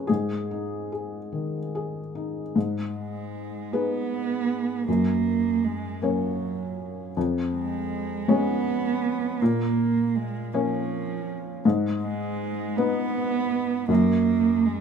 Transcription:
0.00 0.10 F3 soft
0.00 0.11 C#4 soft
0.00 0.07 G#4 soft
0.00 0.11 A#4 medium
0.00 0.11 B4 medium
0.07 2.52 G#2 soft
0.07 0.91 G#4 medium
0.51 1.16 D#4 soft
0.92 1.57 G#4 soft
1.32 1.98 D#3 soft
1.75 2.40 G#4 soft
2.15 2.55 D#4 soft
2.56 3.69 G#2 soft
2.95 3.73 G#3 medium
3.72 4.87 B3 medium
3.72 4.83 D#4 soft
3.72 4.84 G#4 soft
3.72 4.84 B4 soft
4.87 5.99 F#2 soft
4.87 5.65 A#3 medium
5.64 6.03 G#3 medium
6.01 7.16 F#3 medium
6.01 7.12 A#3 soft
6.01 7.12 C#4 soft
6.01 7.13 C#5 soft
7.17 8.26 F2 medium
7.53 8.30 G#3 medium
8.28 9.36 G#3 soft
8.28 9.42 B3 medium
8.28 9.36 C#4 soft
8.28 9.37 C#5 soft
9.41 10.50 A#2 medium
9.41 10.16 A#3 medium
10.15 10.54 G#3 medium
10.52 11.64 F3 medium
10.52 11.61 A#3 soft
10.52 11.61 C#4 soft
10.52 11.61 C#5 medium
11.65 12.74 G#2 medium
12.01 12.78 G#3 medium
12.77 13.89 B3 medium
12.77 13.86 B3 soft
12.77 13.86 D#4 soft
12.77 13.86 B4 soft
13.88 14.81 F#2 medium
13.88 14.67 A#3 medium
14.65 14.81 G#3 medium

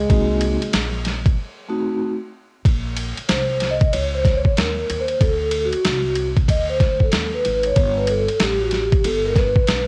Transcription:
0.00 1.07 G#3 medium
0.09 0.59 C2 loud
0.09 0.57 A#3 medium
0.09 0.58 C4 medium
0.09 0.58 D#4 medium
0.09 0.58 F#4 medium
0.09 kick loud
0.09 ride medium
0.41 ride medium
0.62 muted upright bass stroke soft
0.62 ride soft
0.73 1.34 A#1 medium
0.73 snare loud
0.73 hi-hat pedal medium
0.73 ride medium
1.05 snare soft
1.05 ride medium
1.26 kick loud
1.26 ride soft
1.69 2.09 A3 medium
1.69 2.09 C4 medium
1.69 2.09 D#4 medium
1.69 2.09 F#4 loud
2.65 3.15 A#1 loud
2.65 kick loud
2.65 ride medium
2.97 ride medium
3.18 muted upright bass stroke soft
3.18 ride soft
3.29 3.90 C2 medium
3.29 3.73 C5 medium
3.29 snare loud
3.29 hi-hat pedal medium
3.29 ride medium
3.60 snare soft
3.60 ride medium
3.71 3.93 D#5 loud
3.81 kick loud
3.81 ride soft
3.93 4.43 C#2 medium
3.93 4.15 C#5 loud
3.93 ride medium
4.14 4.36 C5 loud
4.25 kick loud
4.25 snare soft
4.25 ride medium
4.35 4.45 C#5 loud
4.45 muted upright bass stroke soft
4.45 kick medium
4.57 4.88 D#2 medium
4.57 5.01 A#4 medium
4.57 snare loud
4.57 hi-hat pedal soft
4.57 ride medium
4.90 5.20 D#2 medium
4.90 ride medium
5.00 5.22 C5 medium
5.08 ride soft
5.21 5.70 D2 loud
5.21 5.65 A4 loud
5.21 kick loud
5.21 ride medium
5.51 ride medium
5.65 6.24 F#4 loud
5.73 muted upright bass stroke soft
5.73 ride soft
5.85 6.46 C2 loud
5.85 snare loud
5.85 hi-hat pedal medium
5.85 ride medium
6.16 ride medium
6.37 kick medium
6.37 ride soft
6.48 7.09 D2 medium
6.48 6.59 D#5 loud
6.48 kick medium
6.48 ride loud
6.70 7.02 C5 loud
6.80 kick loud
6.80 snare soft
6.80 ride medium
7.00 7.34 A4 medium
7.00 kick medium
7.12 7.43 D#2 medium
7.12 snare loud
7.12 hi-hat pedal soft
7.12 ride medium
7.34 7.66 B4 medium
7.45 7.75 G#1 medium
7.45 ride medium
7.63 7.98 C#5 medium
7.63 ride soft
7.76 8.26 G1 loud
7.76 kick loud
7.76 ride medium
7.97 8.08 B4 medium
8.07 8.38 A4 medium
8.07 ride medium
8.28 muted upright bass stroke soft
8.28 ride soft
8.40 9.01 A1 medium
8.40 8.61 G4 medium
8.40 snare loud
8.40 hi-hat pedal medium
8.40 ride medium
8.61 8.73 F#4 medium
8.71 9.06 G4 medium
8.71 snare soft
8.71 ride medium
8.92 kick loud
8.92 ride soft
9.04 9.54 G1 loud
9.04 9.25 A4 medium
9.04 ride medium
9.25 9.30 A#4 loud
9.36 9.87 B4 loud
9.36 kick medium
9.36 snare soft
9.36 ride medium
9.56 muted upright bass stroke medium
9.56 kick medium
9.67 9.87 B1 medium
9.67 snare loud
9.67 hi-hat pedal medium
9.67 ride medium

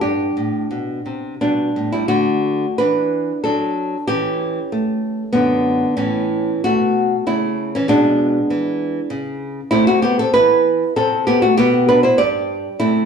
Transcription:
0.01 0.29 G2 medium
0.01 1.37 D4 medium
0.01 1.36 G4 medium
0.37 0.64 A2 medium
0.71 0.99 B2 medium
1.06 1.33 C3 soft
1.41 1.69 B2 medium
1.41 1.89 G3 medium
1.41 1.90 D4 medium
1.76 2.03 A2 soft
1.92 2.08 G3 medium
1.92 2.08 E4 medium
2.08 2.65 D3 medium
2.08 2.75 A3 medium
2.08 2.76 F#4 loud
2.78 3.31 E3 medium
2.78 3.41 D4 medium
2.78 3.41 B4 medium
3.44 3.95 F#3 medium
3.44 4.04 D4 medium
3.44 4.05 A4 medium
4.07 4.58 E3 medium
4.07 5.31 C#4 medium
4.07 5.30 G4 loud
4.72 5.22 A3 medium
5.33 5.84 F#2 medium
5.33 5.93 D3 medium
5.33 5.94 B3 medium
5.97 6.50 A2 medium
5.97 6.60 E3 medium
5.97 6.61 C#4 medium
6.64 7.15 B2 medium
6.64 7.23 A3 medium
6.64 7.24 F#4 loud
7.27 7.76 C#3 medium
7.27 7.70 A3 medium
7.27 7.71 E4 medium
7.75 7.89 E3 medium
7.75 7.89 C#4 medium
7.88 8.38 B2 medium
7.88 9.08 G#3 medium
7.88 9.08 D4 loud
8.50 8.99 E3 medium
9.10 9.60 C#3 medium
9.71 10.21 C3 medium
9.71 9.87 A3 medium
9.71 9.87 E4 loud
9.87 10.03 A3 medium
9.87 10.02 F#4 loud
10.02 10.18 B3 medium
10.02 10.18 G4 loud
10.19 10.34 C4 medium
10.19 10.33 A4 loud
10.34 10.83 E3 medium
10.34 10.92 E4 medium
10.34 10.93 B4 loud
10.96 11.46 C3 medium
10.96 11.25 C4 medium
10.96 11.26 A4 loud
11.27 11.42 B3 medium
11.27 11.42 G4 loud
11.42 11.57 A3 medium
11.42 11.57 F#4 loud
11.57 12.06 B2 medium
11.57 11.87 B3 loud
11.57 11.87 G4 loud
11.89 12.03 D4 medium
11.89 12.03 B4 loud
12.03 12.18 E4 medium
12.03 12.18 C5 loud
12.18 12.67 G2 medium
12.18 12.76 G4 medium
12.18 12.77 D5 loud
12.79 13.05 C3 medium
12.79 13.05 A3 medium
12.79 13.05 E4 loud

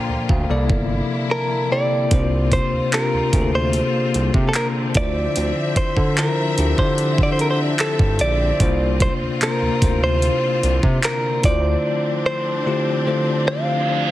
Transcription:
0.00 0.23 A#2 medium
0.00 2.08 D3 medium
0.00 2.08 F3 medium
0.00 0.23 A#3 medium
0.00 2.08 A#3 medium
0.00 0.23 D4 medium
0.00 0.48 F4 medium
0.00 0.23 A4 medium
0.00 0.27 C5 medium
0.00 0.27 G5 medium
0.00 0.51 A#5 medium
0.09 0.17 D2 soft
0.29 0.45 D2 medium
0.29 0.68 F5 medium
0.29 kick medium
0.49 0.71 C2 loud
0.49 1.51 C3 medium
0.49 1.51 A#3 medium
0.49 2.10 E4 medium
0.49 1.52 E4 medium
0.49 1.52 A4 medium
0.49 1.52 D5 medium
0.70 1.01 G1 medium
0.70 kick medium
1.31 1.72 A#4 medium
1.31 1.69 A5 medium
1.71 2.05 C3 medium
1.71 2.05 A#3 medium
1.71 2.05 E4 medium
1.71 2.05 A4 medium
1.71 2.53 D5 medium
1.71 2.06 D5 medium
1.71 2.09 G5 medium
2.11 2.59 C2 loud
2.11 2.79 C3 medium
2.11 8.56 D3 medium
2.11 4.92 A#3 medium
2.11 2.80 A#3 medium
2.11 11.39 C4 medium
2.11 2.80 D4 medium
2.11 2.19 E4 medium
2.11 4.92 F4 medium
2.11 2.80 C5 medium
2.11 kick loud
2.11 closed hi-hat medium
2.19 2.83 F4 medium
2.52 2.93 C5 medium
2.52 kick medium
2.52 closed hi-hat medium
2.73 2.81 D2 soft
2.92 3.27 C3 medium
2.92 3.27 A#3 medium
2.92 3.27 D4 medium
2.92 3.27 F4 medium
2.92 3.27 G4 medium
2.92 3.55 A#4 medium
2.92 clap loud
2.92 closed hi-hat medium
3.13 3.21 D2 soft
3.33 3.81 D2 medium
3.33 4.69 C3 medium
3.33 4.69 A#3 medium
3.33 4.69 D4 medium
3.33 4.69 F4 medium
3.33 3.40 G#4 medium
3.33 kick medium
3.33 closed hi-hat medium
3.41 4.73 A4 medium
3.55 4.31 C5 medium
3.73 closed hi-hat medium
4.14 4.30 C2 medium
4.14 closed hi-hat medium
4.34 4.50 C3 loud
4.34 kick medium
4.49 4.55 A4 medium
4.54 4.67 A#4 medium
4.54 clap loud
4.54 closed hi-hat medium
4.95 5.27 D2 medium
4.95 5.97 D3 medium
4.95 8.57 F3 medium
4.95 5.97 D4 medium
4.95 5.97 E4 medium
4.95 5.98 F4 medium
4.95 5.02 B4 medium
4.95 5.77 D5 medium
4.95 8.57 E5 medium
4.95 kick loud
4.95 closed hi-hat medium
5.03 6.01 C5 medium
5.36 5.52 D2 medium
5.36 closed hi-hat medium
5.76 5.84 D3 soft
5.76 6.18 C5 medium
5.76 kick medium
5.76 closed hi-hat medium
5.97 6.28 D3 loud
5.97 kick medium
6.17 6.51 D3 medium
6.17 6.51 D4 medium
6.17 6.51 E4 medium
6.17 6.52 F4 medium
6.17 6.78 A#4 medium
6.17 6.52 C5 medium
6.17 clap loud
6.17 closed hi-hat medium
6.58 6.74 D2 medium
6.58 7.93 D3 medium
6.58 7.93 D4 medium
6.58 7.94 E4 medium
6.58 7.94 F4 medium
6.58 7.94 G4 medium
6.58 closed hi-hat medium
6.78 7.75 D3 medium
6.78 7.20 C5 medium
6.78 kick medium
6.98 closed hi-hat medium
7.18 kick medium
7.23 7.32 D5 medium
7.32 7.41 C5 medium
7.39 7.50 A#4 medium
7.39 closed hi-hat medium
7.50 7.59 C5 medium
7.79 8.22 A4 medium
7.79 clap loud
7.79 closed hi-hat medium
7.99 8.21 G2 medium
7.99 kick loud
8.19 8.52 A#1 medium
8.19 8.97 D5 loud
8.19 closed hi-hat medium
8.60 9.08 C2 loud
8.60 9.28 C3 medium
8.60 14.11 D3 medium
8.60 11.41 A#3 medium
8.60 9.28 A#3 medium
8.60 9.28 D4 medium
8.60 11.41 F4 medium
8.60 9.29 F4 medium
8.60 9.29 C5 medium
8.60 kick loud
8.60 closed hi-hat medium
9.00 9.13 C5 medium
9.00 kick medium
9.00 closed hi-hat medium
9.21 9.29 D2 soft
9.41 9.75 C3 medium
9.41 9.75 A#3 medium
9.41 9.76 D4 medium
9.41 9.76 F4 medium
9.41 10.03 A#4 medium
9.41 9.76 C5 medium
9.41 clap loud
9.41 closed hi-hat medium
9.62 9.70 D2 soft
9.82 10.30 D2 medium
9.82 11.17 C3 medium
9.82 11.18 A#3 medium
9.82 11.18 D4 medium
9.82 9.89 E4 medium
9.82 11.18 C5 medium
9.82 kick medium
9.82 closed hi-hat medium
9.89 11.21 F4 medium
10.04 10.80 C5 medium
10.22 closed hi-hat medium
10.63 10.79 C2 medium
10.63 closed hi-hat medium
10.83 10.99 C3 loud
10.83 kick medium
11.03 11.45 A#4 medium
11.03 clap loud
11.03 closed hi-hat medium
11.43 11.76 D2 medium
11.43 12.46 D3 medium
11.43 14.11 F3 medium
11.43 12.46 A3 medium
11.43 14.11 C4 medium
11.43 14.11 D4 medium
11.43 12.46 E4 medium
11.43 12.46 F4 medium
11.43 12.47 C5 medium
11.43 12.26 D5 loud
11.43 kick loud
11.43 closed hi-hat medium
12.26 13.47 C5 medium
12.66 13.00 D3 medium
12.66 13.00 A3 medium
12.66 13.00 E4 medium
12.66 13.00 F4 medium
12.66 13.00 G4 medium
13.06 14.11 D3 medium
13.06 14.11 A3 medium
13.06 14.11 D4 medium
13.06 14.11 F4 medium
13.06 14.11 C5 medium
13.46 14.11 F5 loud
13.46 reverse cymbal medium

